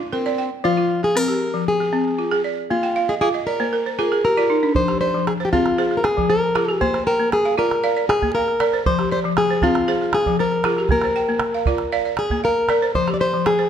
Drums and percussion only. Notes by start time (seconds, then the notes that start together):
4.75 calabash thump
4.88 calabash click
5.15 calabash click
5.27 calabash click
5.41 calabash click
5.53 calabash thump
5.66 calabash click
6.04 calabash click
6.18 calabash thump
6.56 calabash click
6.68 calabash click
6.82 calabash thump
6.94 calabash click
7.20 calabash click
7.32 calabash click
7.46 calabash click
7.71 calabash click
8.10 calabash click
8.22 calabash thump
8.48 calabash click
8.60 calabash click
8.73 calabash click
8.86 calabash thump
8.99 calabash click
9.24 calabash click
9.37 calabash click
9.49 calabash click
9.62 calabash thump
9.75 calabash click
10.13 calabash click
10.26 calabash thump
10.52 calabash click
10.64 calabash click
10.77 calabash click
10.89 calabash thump, calabash click
11.02 calabash click
11.40 calabash click
11.66 calabash thump
11.78 calabash click
12.17 calabash click
12.30 calabash thump
12.69 calabash click
12.95 calabash thump
13.08 calabash click
13.33 calabash click
13.46 calabash click
13.59 calabash click